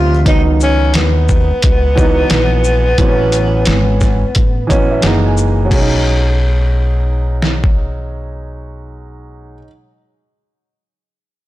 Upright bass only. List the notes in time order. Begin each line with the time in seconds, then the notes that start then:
Already playing: D2
0.26 C#2
0.94 D#2
1.51 muted upright bass stroke
1.64 C#2
2.30 A#1
2.98 A1
3.67 G#1
4.23 muted upright bass stroke
4.36 A1
5.03 F#1
5.71 B1